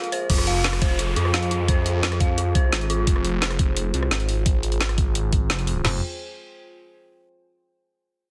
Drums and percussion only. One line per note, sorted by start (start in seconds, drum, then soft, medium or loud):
0.04 closed hi-hat soft
0.12 open hi-hat medium
0.30 kick loud
0.30 closed hi-hat medium
0.30 crash loud
0.38 cross-stick soft
0.47 closed hi-hat medium
0.64 snare loud
0.64 closed hi-hat loud
0.73 cross-stick soft
0.73 closed hi-hat soft
0.82 kick loud
0.82 closed hi-hat medium
0.99 closed hi-hat medium
1.16 closed hi-hat medium
1.25 cross-stick soft
1.34 snare loud
1.34 closed hi-hat loud
1.42 closed hi-hat soft
1.51 closed hi-hat medium
1.68 kick loud
1.68 closed hi-hat medium
1.86 closed hi-hat medium
2.03 snare loud
2.03 closed hi-hat loud
2.12 cross-stick soft
2.12 closed hi-hat soft
2.20 kick loud
2.20 closed hi-hat medium
2.38 closed hi-hat medium
2.55 kick loud
2.55 closed hi-hat medium
2.73 snare loud
2.73 closed hi-hat medium
2.81 closed hi-hat soft
2.90 closed hi-hat medium
3.07 kick loud
3.07 closed hi-hat medium
3.16 cross-stick soft
3.25 closed hi-hat medium
3.42 snare loud
3.42 closed hi-hat medium
3.51 cross-stick soft
3.51 closed hi-hat soft
3.59 kick loud
3.59 closed hi-hat medium
3.77 closed hi-hat medium
3.94 closed hi-hat medium
4.03 cross-stick soft
4.11 snare loud
4.11 closed hi-hat medium
4.20 closed hi-hat soft
4.29 open hi-hat medium
4.46 kick loud
4.46 closed hi-hat medium
4.63 closed hi-hat medium
4.72 closed hi-hat soft
4.81 snare loud
4.81 closed hi-hat medium
4.89 cross-stick soft
4.89 closed hi-hat soft
4.98 kick loud
4.98 closed hi-hat medium
5.15 closed hi-hat medium
5.33 kick loud
5.33 closed hi-hat medium
5.50 snare loud
5.50 closed hi-hat medium
5.59 closed hi-hat soft
5.67 open hi-hat medium
5.85 snare loud
5.85 floor tom loud
5.85 crash medium